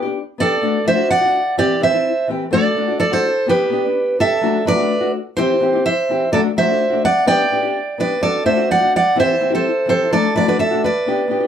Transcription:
0.02 nylon-string guitar D4 G4
0.38 nylon-string guitar B3 D4 G4, steel-string acoustic guitar A4 D5
0.62 nylon-string guitar A3 D4 F#4
0.85 nylon-string guitar A3 D4 F#4, steel-string acoustic guitar C5 E5
0.95 nylon-string guitar D4 F#4
1.10 steel-string acoustic guitar D5 F#5
1.21 nylon-string guitar D4 F#4
1.57 nylon-string guitar E3 C4 E4 G4, steel-string acoustic guitar G4 D5
1.80 nylon-string guitar E3 C4 E4 G4, steel-string acoustic guitar C5 E5
1.92 nylon-string guitar C4 E4, muted nylon-string guitar stroke
2.28 nylon-string guitar E3 C4 E4 G4
2.51 nylon-string guitar A3 D4 F#4, steel-string acoustic guitar A4 D5
2.75 nylon-string guitar A3 D4 F#4
2.87 nylon-string guitar D4 F#4
3.00 steel-string acoustic guitar A4 D5
3.11 nylon-string guitar D4 F#4, steel-string acoustic guitar A4 C5
3.46 nylon-string guitar B3 D4 G4, steel-string acoustic guitar G4 B4
3.70 nylon-string guitar B3 D4 G4
3.85 nylon-string guitar D4
4.19 nylon-string guitar D4 G4, steel-string acoustic guitar A4 E5
4.41 nylon-string guitar F#3 A3 D4 F#4
4.65 nylon-string guitar F#3 A3 D4 F#4, steel-string acoustic guitar B4 D5
4.76 nylon-string guitar A3 D4 F#4
5.01 nylon-string guitar A3 D4 F#4
5.37 nylon-string guitar E3 C4 E4 G4, steel-string acoustic guitar G4 C5
5.60 nylon-string guitar E3 C4 E4 G4
5.73 nylon-string guitar C4 E4 G4
5.86 steel-string acoustic guitar C5 E5
6.09 nylon-string guitar E3 C4 E4 G4
6.32 nylon-string guitar F#3 A3 D4 F#4, steel-string acoustic guitar A4 D5
6.57 nylon-string guitar F#3 A3 D4 F#4, steel-string acoustic guitar C5 E5
6.68 nylon-string guitar A3 D4 F#4
6.90 nylon-string guitar A3 D4 F#4
7.05 steel-string acoustic guitar D5 F#5
7.26 nylon-string guitar B3 D4 G4, steel-string acoustic guitar D5 G5
7.51 nylon-string guitar B3 D4 G4
7.63 nylon-string guitar D4 G4
7.98 nylon-string guitar B3 D4 G4, steel-string acoustic guitar B4 D5
8.21 nylon-string guitar D4 F#4, steel-string acoustic guitar A4 D5, muted nylon-string guitar stroke
8.44 nylon-string guitar A3 D4 F#4, steel-string acoustic guitar C5 E5
8.57 nylon-string guitar D4 F#4
8.71 steel-string acoustic guitar D5 F#5
8.80 nylon-string guitar D4 F#4
8.96 steel-string acoustic guitar D5 F#5
9.16 nylon-string guitar E3 C4 E4 G4
9.20 steel-string acoustic guitar C5 E5
9.39 nylon-string guitar E3 C4 E4 G4
9.50 nylon-string guitar C4 E4 G4
9.55 steel-string acoustic guitar A4 C5
9.86 nylon-string guitar E3 C4 E4 G4, steel-string acoustic guitar A4
9.90 steel-string acoustic guitar C5
10.11 nylon-string guitar F#3 A3 D4 F#4, steel-string acoustic guitar A4 D5
10.35 nylon-string guitar F#3 A3 D4 F#4, steel-string acoustic guitar B4 D5
10.47 nylon-string guitar A3 D4 F#4, steel-string acoustic guitar B4 D5
10.59 steel-string acoustic guitar A4 E5
10.71 nylon-string guitar A3 D4 F#4
10.84 steel-string acoustic guitar B4 D5
11.06 nylon-string guitar B3 D4 G4
11.28 nylon-string guitar B3 D4 G4
11.40 nylon-string guitar D4 G4

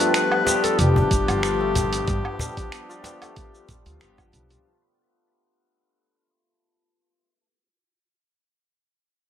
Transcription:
Already playing: tine electric piano F3 G3 B3 D4 G4, santur G3 B3 D4 F4, analog synth pad F4 B4 G5
0.00 santur A3, clarinet B4, cabasa
0.14 santur B3, clarinet B4, finger snap, closed hi-hat, cabasa
0.32 santur B3, low woodblock
0.44 tine electric piano F3 G3 B3 D4 G4, santur B3, cajon slap, cabasa
0.64 santur B3, clarinet A4, cajon slap, closed hi-hat, cabasa
0.79 upright bass F1, santur G3, clarinet G4, closed hi-hat, cabasa
0.96 santur D4, cajon bass
1.11 upright bass G1, santur B3, kick, closed hi-hat, cabasa
1.28 upright bass G1, santur F4, closed hi-hat, cabasa, low woodblock
1.43 santur B3, finger snap, cabasa
1.61 santur A3
1.75 santur B3, cajon bass, closed hi-hat, cabasa
1.93 santur B3, closed hi-hat, cabasa
2.06 upright bass G1, tine electric piano F3 G3 B3 D4, santur B3, kick, closed hi-hat, cabasa
2.10 tine electric piano G4
2.25 santur B3, low woodblock
2.39 santur G3, cajon bass, cabasa
2.57 santur D4, kick, closed hi-hat, cabasa
2.72 santur B3, finger snap, closed hi-hat, cabasa
2.89 santur F4, cabasa
3.02 tine electric piano F3 G3 B3 D4 G4, santur B3, cajon slap, closed hi-hat, cabasa
3.22 santur A3, cajon slap, closed hi-hat, cabasa, low woodblock
3.36 santur B3, kick, closed hi-hat, cabasa
3.54 santur B3, cabasa
3.69 santur G3, cajon bass, kick, closed hi-hat, cabasa
3.86 upright bass D2, santur F4, closed hi-hat, cabasa
4.00 tine electric piano F3 G3 B3 D4 G4, santur B3, finger snap, closed hi-hat, cabasa
4.18 santur F3, kick, cajon slap, cabasa, low woodblock
4.33 upright bass B1, santur B3, closed hi-hat, cabasa
4.50 santur F3, cajon slap, closed hi-hat, cabasa

